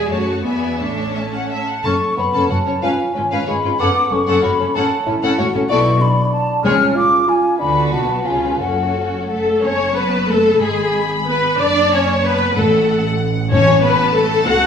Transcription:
Already playing: double bass section E2, cello section G#3, viola section G#4
0.11 double bass section F#2, cello section A3, viola section F#4, violin section C#5 A5
0.44 double bass section E2, viola section B3, cello section B3, violin section D5 E5 G#5
0.79 double bass section A1, cello section A3, viola section D4, violin section C#5 A5
1.15 viola section C#4, violin section E5
1.33 violin section F#5
1.50 violin section E5, flute A5
1.67 violin section F#5
1.84 double bass section F#1, cello section F#2, bassoon A3, viola section C#4, violin section A4 A5, flute C#6
2.17 double bass section F#1, cello section F#2, bassoon B3, viola section C#4, violin section C#4 C#5, flute B5
2.33 double bass section F#1, cello section F#2, viola section C#4, violin section A4 A5
2.50 double bass section F#1, cello section F#2, viola section C#4, bassoon C#4, violin section F#4 F#5, flute A5
2.66 double bass section F#1, cello section F#2, viola section C#4, violin section C#4 C#5
2.82 double bass section G#1, cello section G#2, viola section C#4, bassoon F4, violin section B4 F5, flute G#5
3.14 double bass section G#1, cello section G#2, bassoon C#4, viola section C#4, violin section F4 B4
3.31 double bass section G#1, cello section G#2, viola section C#4, violin section B4 F5
3.47 double bass section G#1, cello section G#2, bassoon G#3, viola section C#4, violin section G#4 C#5, flute B5
3.63 double bass section G#1, cello section G#2, viola section C#4, violin section F4 B4
3.79 double bass section F#1, cello section F#2, bassoon B3, viola section C#4, violin section A4 F#5, flute D6
4.11 double bass section F#1, cello section F#2, bassoon A3, violin section C#4 A4, viola section C#4, flute C#6
4.27 double bass section F#1, cello section F#2, viola section C#4, violin section A4 F#5
4.43 double bass section F#1, cello section F#2, viola section C#4, violin section F#4 C#5, flute B5
4.59 double bass section F#1, cello section F#2, violin section C#4 A4, viola section C#4
4.74 double bass section A1, cello section A2, bassoon C#4, viola section C#4, violin section A4 F#5, flute A5
5.06 double bass section A1, cello section A2, viola section C#4, violin section C#4 A4, bassoon E4
5.23 double bass section A1, cello section A2, viola section C#4, violin section A4 F#5
5.38 double bass section A1, cello section A2, viola section C#4, violin section F#4 C#5, bassoon F#4
5.54 double bass section A1, cello section A2, violin section C#4 A4, viola section C#4
5.69 double bass section B1, cello section B2, viola section B3, bassoon E4, violin section A4 D5, flute C#6
6.01 bassoon D4, flute B5
6.32 flute A5
6.64 double bass section C#2, cello section C#3, timpani C#3, viola section G#3, bassoon C#4, violin section G#4 C#5, flute F6
6.96 bassoon F4, flute D6
7.27 bassoon F4, flute G#5
7.59 double bass section D2, cello section D3, viola section B3, bassoon D4, violin section F#4 B4, flute B5
7.92 double bass section B1, cello section B2, bassoon F#4, flute A5
8.25 double bass section C#2, cello section C#3, viola section C#4, bassoon F4, violin section F4 B4, flute G#5
8.59 double bass section F#1, cello section F#2, bassoon C#4, viola section C#4, violin section F#4 A4, flute F#5
9.29 cello section A3, violin section A4, viola section A4
9.63 double bass section F#1, cello section C#4, viola section C#5, violin section C#5 A5
9.96 cello section B3, viola section B4, violin section B4
10.29 cello section A3, viola section A4, violin section A4
10.61 double bass section G#1, cello section G#3, violin section G#4 B5, viola section G#4
11.26 cello section B3, viola section B4, violin section B4
11.58 double bass section F#1, cello section D4, viola section D5, violin section D5 A5
11.91 cello section C#4, violin section C#5, viola section C#5
12.24 cello section B3, viola section B4, violin section B4
12.55 double bass section A1, timpani A2, cello section A3, viola section A4, violin section A4 F#5
13.51 timpani A2, cello section C#4, viola section C#5, violin section C#5 A5
13.83 cello section B3, violin section B4, viola section B4
14.15 cello section A3, violin section A4, viola section A4
14.46 double bass section C#2, cello section F#4, violin section F#5, viola section F#5

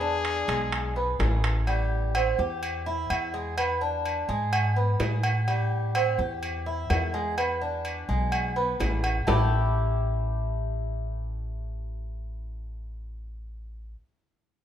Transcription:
Already playing: upright bass E2, trumpet G#4
0.01 cuban tres D4
0.25 high timbale
0.48 upright bass B1, cuban tres G#3, high timbale
0.72 high timbale
0.96 cuban tres B3
1.19 upright bass A1, cuban tres G#4, high timbale, low timbale
1.44 high timbale
1.67 cuban tres G3, low agogo
2.15 cuban tres C4, low agogo
2.38 upright bass E2, cuban tres G4
2.63 low agogo
2.86 cuban tres E4
3.10 upright bass E2, low agogo
3.34 cuban tres G#3
3.57 cuban tres B3, low agogo
3.81 cuban tres D4
4.05 low agogo
4.29 upright bass G#2, cuban tres G#3
4.53 low agogo
4.76 cuban tres B3
5.00 upright bass A2, cuban tres G#4, low timbale, low agogo
5.23 low agogo
5.48 cuban tres G3, low agogo
5.95 cuban tres C4, low agogo
6.18 upright bass E2, cuban tres G4
6.43 low agogo
6.66 cuban tres E4
6.90 upright bass E2, low timbale, low agogo
7.14 cuban tres G#3
7.38 cuban tres B3, low agogo
7.61 cuban tres D4
7.85 low agogo
8.09 upright bass B1, cuban tres G#3
8.32 low agogo
8.56 cuban tres B3
8.80 upright bass A1, cuban tres G#4, low timbale, low agogo
9.04 low agogo
9.27 upright bass A1, cuban tres A3 E4 G4, low timbale

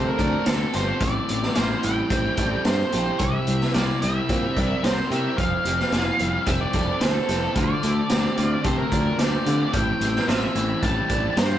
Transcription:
Already playing: distorted electric guitar D3 A3 C4 F4 A4, twelve-string acoustic guitar A4 C5, overdriven electric guitar A4
0.07 lead electric guitar A#4
0.19 fingered electric bass D2, overdriven electric guitar A3, distorted electric guitar A4, twelve-string acoustic guitar D5, kick, closed hi-hat
0.46 fingered electric bass D2, distorted electric guitar C4, lead electric guitar A4, twelve-string acoustic guitar C5, snare, closed hi-hat
0.73 fingered electric bass G1, distorted electric guitar F4, twelve-string acoustic guitar G4, overdriven electric guitar A4, lead electric guitar C5, snare, closed hi-hat
1.00 fingered electric bass A1, distorted electric guitar A2, twelve-string acoustic guitar E4, lead electric guitar D5, kick, closed hi-hat
1.28 fingered electric bass A1, distorted electric guitar C4, twelve-string acoustic guitar G4, closed hi-hat
1.43 snare
1.55 fingered electric bass A1, distorted electric guitar E4, twelve-string acoustic guitar F4, lead electric guitar C5, snare, closed hi-hat
1.83 fingered electric bass A1, distorted electric guitar G3, twelve-string acoustic guitar E4, lead electric guitar G5, closed hi-hat
2.10 fingered electric bass A1, distorted electric guitar C4, twelve-string acoustic guitar G4, kick, closed hi-hat
2.37 fingered electric bass A1, overdriven electric guitar G3, distorted electric guitar A4, twelve-string acoustic guitar D5, kick, closed hi-hat
2.65 fingered electric bass G2, distorted electric guitar C4, twelve-string acoustic guitar C5, lead electric guitar C5, snare, closed hi-hat
2.92 fingered electric bass A#1, distorted electric guitar E4, twelve-string acoustic guitar G4, overdriven electric guitar A4, closed hi-hat
3.19 fingered electric bass C2, distorted electric guitar C3, twelve-string acoustic guitar E4, lead electric guitar E5, kick, closed hi-hat
3.47 fingered electric bass C2, distorted electric guitar C4, twelve-string acoustic guitar G4, closed hi-hat
3.61 snare
3.74 fingered electric bass C2, distorted electric guitar E4, twelve-string acoustic guitar F4, lead electric guitar D5, snare, closed hi-hat
4.01 fingered electric bass C2, distorted electric guitar G3, twelve-string acoustic guitar E4, lead electric guitar E5, closed hi-hat
4.29 fingered electric bass A#2, distorted electric guitar C4, twelve-string acoustic guitar G4, kick, closed hi-hat
4.56 fingered electric bass C2, overdriven electric guitar G3, distorted electric guitar A#4, twelve-string acoustic guitar D5, kick, closed hi-hat
4.83 fingered electric bass C2, distorted electric guitar C4, twelve-string acoustic guitar C5, lead electric guitar C5, snare, closed hi-hat
5.10 fingered electric bass C3, distorted electric guitar E4, twelve-string acoustic guitar G4, overdriven electric guitar A#4, lead electric guitar E5, closed hi-hat
5.38 fingered electric bass F1, distorted electric guitar F3, twelve-string acoustic guitar E4, lead electric guitar F5, kick, closed hi-hat
5.65 fingered electric bass F1, distorted electric guitar C4, twelve-string acoustic guitar G4, closed hi-hat
5.80 snare
5.92 fingered electric bass F1, distorted electric guitar E4, twelve-string acoustic guitar F4, snare, closed hi-hat
6.19 fingered electric bass F1, distorted electric guitar G3, twelve-string acoustic guitar E4, closed hi-hat
6.46 fingered electric bass F1, distorted electric guitar C4, twelve-string acoustic guitar G4, lead electric guitar E5, kick, closed hi-hat
6.61 lead electric guitar D5
6.73 fingered electric bass F1, overdriven electric guitar G3, distorted electric guitar A4, twelve-string acoustic guitar D5, kick, closed hi-hat
7.01 fingered electric bass D2, distorted electric guitar C4, lead electric guitar A4, twelve-string acoustic guitar C5, snare, closed hi-hat
7.29 fingered electric bass F1, distorted electric guitar E4, twelve-string acoustic guitar G4, overdriven electric guitar A4, snare, closed hi-hat
7.56 fingered electric bass D2, distorted electric guitar D3, twelve-string acoustic guitar F4, lead electric guitar D5, kick, closed hi-hat
7.83 fingered electric bass D2, distorted electric guitar A3, twelve-string acoustic guitar A4, closed hi-hat
8.10 fingered electric bass D2, distorted electric guitar C4, twelve-string acoustic guitar G4, snare, closed hi-hat
8.37 fingered electric bass D2, distorted electric guitar D3, twelve-string acoustic guitar F4, closed hi-hat
8.64 fingered electric bass C3, distorted electric guitar A3, twelve-string acoustic guitar A4, lead electric guitar C5, kick, closed hi-hat
8.77 lead electric guitar A#4
8.92 fingered electric bass D2, overdriven electric guitar D3, distorted electric guitar F4, twelve-string acoustic guitar D5, kick, closed hi-hat
9.19 fingered electric bass D2, distorted electric guitar A3, twelve-string acoustic guitar C5, lead electric guitar D5, snare, closed hi-hat
9.46 fingered electric bass D3, distorted electric guitar C4, overdriven electric guitar F4, twelve-string acoustic guitar G4, closed hi-hat
9.73 fingered electric bass A1, distorted electric guitar A2, twelve-string acoustic guitar E4, lead electric guitar G5, kick, closed hi-hat
10.01 fingered electric bass A1, distorted electric guitar G3, twelve-string acoustic guitar G4, closed hi-hat
10.16 snare
10.28 fingered electric bass A1, distorted electric guitar C4, twelve-string acoustic guitar F4, lead electric guitar E5, snare, closed hi-hat
10.55 fingered electric bass A1, distorted electric guitar E3, twelve-string acoustic guitar E4, closed hi-hat
10.82 fingered electric bass A1, distorted electric guitar G3, twelve-string acoustic guitar G4, lead electric guitar A5, kick, closed hi-hat
11.10 fingered electric bass A1, overdriven electric guitar E3, distorted electric guitar E4, twelve-string acoustic guitar D5, kick, closed hi-hat
11.37 fingered electric bass G2, distorted electric guitar G3, twelve-string acoustic guitar C5, lead electric guitar C5, snare, closed hi-hat

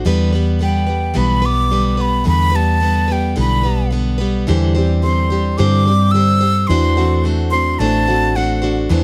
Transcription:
0.05 fingered electric bass E2, steel-string acoustic guitar D3 E3 G3 B3 B4
0.32 steel-string acoustic guitar G3 B3 B4
0.59 steel-string acoustic guitar D3 G3 B3 B4, flute G5
0.87 steel-string acoustic guitar G3 B3 B4
1.14 fingered electric bass B1, steel-string acoustic guitar D3 E3 G3 B3 B4, flute B5
1.42 steel-string acoustic guitar G3 B3 B4, flute D6
1.70 steel-string acoustic guitar D3 G3 B3 B4
1.97 steel-string acoustic guitar G3 B3 B4, flute B5
2.24 fingered electric bass E2, steel-string acoustic guitar D3 E3 G3 B3 B4
2.28 flute B5
2.52 steel-string acoustic guitar G3 B3 B4
2.56 flute A5
2.80 steel-string acoustic guitar D3 G3 B3 B4
3.08 steel-string acoustic guitar G3 B3 B4
3.12 flute G5
3.36 fingered electric bass B1, steel-string acoustic guitar D3 E3 G3 B3 B4, flute B5
3.63 steel-string acoustic guitar G3 B3 B4
3.91 steel-string acoustic guitar D3 G3 B3 B4
4.18 steel-string acoustic guitar G3 B3 B4
4.47 fingered electric bass E2, steel-string acoustic guitar D3 E3 G3 G4 C5, upright piano E3
4.75 steel-string acoustic guitar G3 G4 C5, upright piano C4 D4 G4
5.02 steel-string acoustic guitar D3 G3 G4 C5, upright piano C4, flute C6
5.30 steel-string acoustic guitar G3 G4 C5, upright piano D4
5.57 fingered electric bass G2, steel-string acoustic guitar D3 E3 G3 G4 C5, upright piano C4, flute D6
5.85 steel-string acoustic guitar G3 G4 C5, upright piano C4 D4 G4
6.11 steel-string acoustic guitar D3 G3, flute E6
6.15 steel-string acoustic guitar G4 C5
6.41 steel-string acoustic guitar G3 G4 C5
6.67 steel-string acoustic guitar E2 E3 A3 D4 F#4 C5, fingered electric bass E2, upright piano E3, flute C6
6.96 upright piano A3 C4 F#4, steel-string acoustic guitar A3 D4 F#4 C5
7.24 steel-string acoustic guitar A3 D4 F#4 C5, upright piano A3
7.51 upright piano C4, steel-string acoustic guitar D4 F#4 C5, flute C6
7.55 steel-string acoustic guitar A3
7.79 fingered electric bass A1, steel-string acoustic guitar E2 E3 A3 D4 F#4 C5, upright piano A3, flute A5
8.07 upright piano A3 C4 F#4, steel-string acoustic guitar A3 D4 F#4 C5
8.35 steel-string acoustic guitar A3 D4 F#4 C5, flute F#5
8.62 steel-string acoustic guitar A3 D4 F#4 C5
8.89 steel-string acoustic guitar E2 E3 A3 D4 F#4 C5, fingered electric bass E2, upright piano E3

